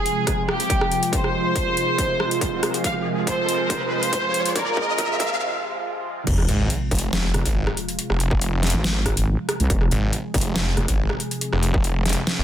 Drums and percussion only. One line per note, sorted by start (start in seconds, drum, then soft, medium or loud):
0.06 closed hi-hat medium
0.27 kick medium
0.27 cross-stick medium
0.27 closed hi-hat medium
0.49 cross-stick medium
0.60 closed hi-hat soft
0.70 kick medium
0.70 closed hi-hat medium
0.81 cross-stick medium
0.92 closed hi-hat medium
1.03 closed hi-hat medium
1.13 kick medium
1.13 closed hi-hat medium
1.24 cross-stick soft
1.56 kick loud
1.56 closed hi-hat medium
1.77 closed hi-hat medium
1.98 kick loud
1.98 closed hi-hat medium
2.20 cross-stick medium
2.31 closed hi-hat medium
2.41 kick medium
2.41 closed hi-hat medium
2.63 cross-stick medium
2.63 closed hi-hat medium
2.74 closed hi-hat medium
2.84 kick loud
2.84 closed hi-hat medium
3.27 kick loud
3.27 closed hi-hat medium
3.49 closed hi-hat medium
3.70 kick loud
3.70 closed hi-hat medium
4.03 closed hi-hat medium
4.13 kick medium
4.13 closed hi-hat medium
4.34 closed hi-hat medium
4.46 closed hi-hat medium
4.56 kick loud
4.56 closed hi-hat medium
4.77 kick loud
4.98 kick loud
4.98 closed hi-hat medium
5.20 kick loud
5.20 closed hi-hat medium
6.27 kick loud
6.27 closed hi-hat medium
6.27 crash loud
6.38 cross-stick medium
6.49 closed hi-hat medium
6.70 closed hi-hat medium
6.91 kick loud
6.91 closed hi-hat medium
6.95 closed hi-hat medium
6.99 closed hi-hat medium
7.13 cross-stick medium
7.13 snare loud
7.13 closed hi-hat medium
7.34 cross-stick medium
7.34 closed hi-hat medium
7.45 kick medium
7.45 closed hi-hat medium
7.67 cross-stick medium
7.77 closed hi-hat medium
7.89 closed hi-hat soft
7.99 closed hi-hat medium
8.10 cross-stick medium
8.20 closed hi-hat medium
8.31 kick loud
8.41 closed hi-hat medium
8.63 snare soft
8.63 closed hi-hat medium
8.67 closed hi-hat medium
8.70 closed hi-hat medium
8.84 snare loud
8.84 closed hi-hat medium
9.06 kick medium
9.06 cross-stick medium
9.06 closed hi-hat medium
9.17 closed hi-hat medium
9.49 cross-stick medium
9.49 closed hi-hat medium
9.60 closed hi-hat soft
9.70 kick loud
9.70 closed hi-hat medium
9.81 cross-stick medium
9.91 closed hi-hat medium
10.13 closed hi-hat medium
10.34 kick loud
10.34 closed hi-hat medium
10.38 closed hi-hat medium
10.41 closed hi-hat medium
10.56 cross-stick medium
10.56 snare loud
10.56 closed hi-hat medium
10.77 cross-stick medium
10.77 closed hi-hat medium
10.88 kick medium
10.88 closed hi-hat medium
11.10 cross-stick medium
11.20 closed hi-hat medium
11.31 closed hi-hat soft
11.41 closed hi-hat medium
11.53 cross-stick medium
11.63 closed hi-hat medium
11.74 kick loud
11.84 closed hi-hat medium
12.06 snare soft
12.06 closed hi-hat soft
12.09 closed hi-hat medium
12.13 closed hi-hat medium
12.27 snare loud
12.27 closed hi-hat medium